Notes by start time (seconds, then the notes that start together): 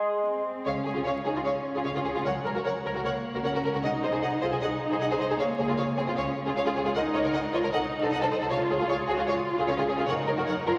Already playing: G#3 G#4 C6
0.24 C4
0.66 C#2 C#4 G#4 C#5 F5
0.85 C#2 G#4 C#5
0.95 C#2 F4 G#4
1.05 C#2 G#4 C#5 F5
1.25 C#2 D#4 G#4 C#5
1.35 C#2 F4 G#4
1.45 C#2 C#4 G#4 C#5 F5
1.74 C#2 F4 G#4
1.84 C#2 G#4 C#5 F5
1.94 C#2 F4 G#4
2.04 C#2 G#4 C#5
2.14 C#2 F4 G#4
2.25 C#2 F#3 A#4 C#5 F#5
2.45 C#2 A#4 C#5
2.55 C#2 F#4 A#4
2.64 C#2 A#4 C#5 F#5
2.84 C#2 G#3 A#4 C#5
2.94 C#2 F#4 A#4
3.04 C#2 A#3 A#4 C#5 F#5
3.34 C#2 F#4 A#4
3.44 C#2 C#4 A#4 C#5 F#5
3.54 C#2 F#4 A#4
3.64 C#2 A#4 C#5
3.74 C#2 F#4 A#4
3.83 C2 D#4 G#4 D#5 F#5
4.03 C2 G#4 C5 D#5
4.13 C2 G#4 C5
4.23 C2 G#4 D#5 F#5
4.42 C2 F4 G#4 C5 D#5
4.52 C2 G#4 C5
4.62 C2 D#4 G#4 D#5 F#5
4.91 C2 G#4 C5
5.00 C2 G#4 D#5 F#5
5.10 C2 G#4 C5
5.19 C2 G#4 C5 D#5
5.29 C2 G#4 C5
5.39 C#2 A#3 G#4 C#5 F5
5.58 C#2 G#4 C#5
5.67 C#2 F4 G#4
5.77 C#2 G#4 C#5 F5
5.97 C#2 C4 G#4 C#5
6.07 C#2 F4 G#4
6.16 C#2 C#4 G#4 C#5 F5
6.45 C#2 F4 G#4
6.55 C#2 G#4 C#5 F5
6.65 C#2 F4 G#4
6.75 C#2 G#4 C#5
6.84 C#2 F4 G#4
6.94 C#2 D#4 A#4 D#5 F#5
7.14 C#2 A#4 C#5 D#5
7.24 C#2 A#4 C#5
7.34 C#2 A#4 D#5 F#5
7.53 C#2 F4 A#4 C#5 D#5
7.63 C#2 A#4 C#5
7.73 C2 D#4 A4 D#5 F#5
8.02 C2 A4 C5
8.11 C2 A4 D#5 F#5
8.21 C2 A4 C5
8.31 C2 A4 C5 D#5
8.41 C2 A4 C5
8.50 C#2 F4 G#4 C#5 F5
8.70 C#2 G#4 C#5
8.79 C#2 F4 G#4
8.89 C#2 G#4 C#5 F5
9.08 C#2 F#4 G#4 C#5
9.18 C#2 F4 G#4
9.28 C#2 F4 G#4 C#5 F5
9.57 C#2 F4 G#4
9.68 C#2 C#4 G#4 C#5 F5
9.78 C#2 F4 G#4
9.88 C#2 G#4 C#5
9.98 C#2 F4 G#4
10.08 F#1 D#4 A#4 C#5 F#5
10.27 F#1 A#4 C#5
10.37 F#1 F#4 A#4
10.47 F#1 A#4 C#5 F#5
10.67 F#1 F4 A#4 C#5